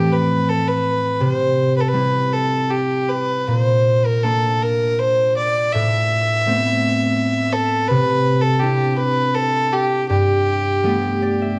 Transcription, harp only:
Already playing: A2 E3 A3 C4
1.20 C3
1.93 G3 C4 E4
3.47 A#2
4.23 A#3 D4 F4
5.74 A2
6.46 A3 B3 C4
7.90 C3
8.62 C4 D4 E4
10.10 G2
10.83 G3 A3 B3
11.22 D5
11.42 E5

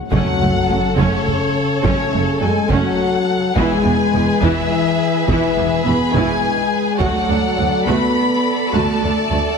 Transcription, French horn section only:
0.12 F#3
0.96 C#3
1.84 C#3
2.42 G#3
2.70 F#3
3.55 G#3
4.42 E3
5.27 E3
5.84 B3
6.14 G#3
6.99 F#3
7.86 B3
8.71 A3

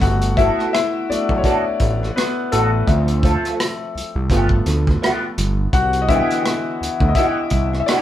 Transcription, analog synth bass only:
0.02 G1
1.10 B1
1.30 B1
1.81 A1
2.53 A1
2.88 D2
3.95 C2
4.15 C2
4.30 G1
4.67 D2
5.38 G1
5.74 C2
6.81 D2
7.01 D2
7.52 C2

